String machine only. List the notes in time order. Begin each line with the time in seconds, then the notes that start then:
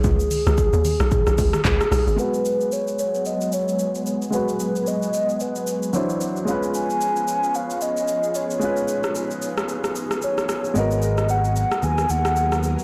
2.19 F#3 G#3 B3 G#4
5.94 E3 C4 D4 F#4
6.47 F3 B3 C#4 G#4
8.61 D#4
10.75 F#3 A#4